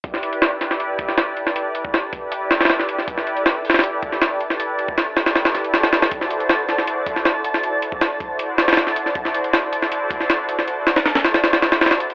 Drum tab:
HH |x---x-x-o---x---x---x---x---x---|x---x---x---x---x---o-ooo---x---|x---x-x-o---oooox---x---x---x---|x---x---x---o-o-o-o-x-x-o-o-o-o-|
SD |--o-----o---o-o-------o-o-----o-|--------o-----------o-ooo-o---o-|--o-----o----ooo------o-o-----o-|--------o---o-o-o-o-o---o-o-o-o-|
BD |o-------------------o-----------|------o-----o-------------------|o-------------------o-----------|------o-------------------------|

HH |x---x-x-o---x---x---x---x---x---|x---x---x---x---x---o-ooo---x---|x---x-x-o---x---x---x---x---x---|x---o-o-o-o-o-o-o-o-o-o-ooo-x-x-|
SD |--o-----o---o-o-------o-o-----o-|--------o-----------o-ooo-o---o-|--o-----o-----o-------o-o-----o-|----o-o-o-o-o-o-o-o-o-o-ooo-----|
BD |o-------------------o-----------|------o-----o-------------------|o-------------------o-----------|--------------------------------|